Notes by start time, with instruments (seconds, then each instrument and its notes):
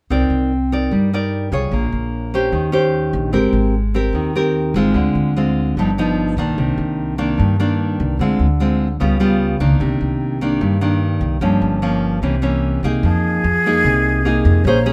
0.10 upright bass C2, nylon-string guitar C4 D#4 A#4 D5
0.30 upright bass C2
0.72 nylon-string guitar D#4 A#4 D5
0.91 upright bass G2, nylon-string guitar G3
1.13 nylon-string guitar D#4 A#4 D5
1.52 upright bass C2, nylon-string guitar F4 G#4 C#5
1.71 upright bass A#1, nylon-string guitar A#3
1.92 upright bass A#1
2.34 nylon-string guitar C#4 G4 C5
2.52 upright bass D#2, nylon-string guitar D#3
2.72 nylon-string guitar C#4 G4 C5
3.13 upright bass A#1
3.33 upright bass G#1, nylon-string guitar G#3 C4 G4 A#4
3.53 upright bass G#1
3.94 nylon-string guitar C4 G4 A#4
4.13 upright bass D#2, nylon-string guitar D#3
4.35 nylon-string guitar C4 G4 A#4
4.74 upright bass G#1, nylon-string guitar G#3 C4 F4
4.94 upright bass D2, nylon-string guitar D3
5.15 upright bass D2
5.36 nylon-string guitar G#3 C4 F4
5.77 upright bass G1, nylon-string guitar G2 F3 B3 D#4
5.98 nylon-string guitar F3 B3 D#4
6.37 upright bass B1, nylon-string guitar D#3 A#3 D4
6.58 upright bass C2, nylon-string guitar C3
6.78 upright bass C2
7.18 nylon-string guitar D#3 A#3 D4
7.38 nylon-string guitar G2, upright bass G2
7.60 nylon-string guitar D#3 A#3 D4
8.00 upright bass C2
8.19 upright bass D2, nylon-string guitar D3 G#3 C4 F4
8.39 upright bass D2
8.60 nylon-string guitar G#3 C4 F4
9.00 upright bass C#2, nylon-string guitar C#3 G3 B3 F4
9.20 nylon-string guitar G3 B3 F4
9.60 upright bass C#2, nylon-string guitar D#3 A#3 D4
9.80 upright bass C2, nylon-string guitar C3
10.01 upright bass C2
10.41 nylon-string guitar D#3 A#3 D4
10.61 upright bass G2, nylon-string guitar G2
10.81 nylon-string guitar D#3 A#3 D4
11.21 upright bass C2
11.41 upright bass G1, nylon-string guitar G2 F3 A#3 C#4
11.62 upright bass G1
11.82 nylon-string guitar F3 A#3 C#4
12.22 upright bass C2, nylon-string guitar C3 E3 A#3 C#4
12.42 nylon-string guitar E3 A#3 C#4
12.83 upright bass C2, nylon-string guitar A#3 D#4 G#4
13.03 upright bass F2, nylon-string guitar F3, flute G#4
13.44 upright bass F2
13.66 nylon-string guitar A#3 D#4 G#4
13.84 upright bass C2, nylon-string guitar C3
14.25 nylon-string guitar A#3 D#4 G#4
14.45 upright bass F2
14.64 upright bass A#1, nylon-string guitar A#3 C#4 G#4 C5, flute C#5
14.86 nylon-string guitar C#4 G#4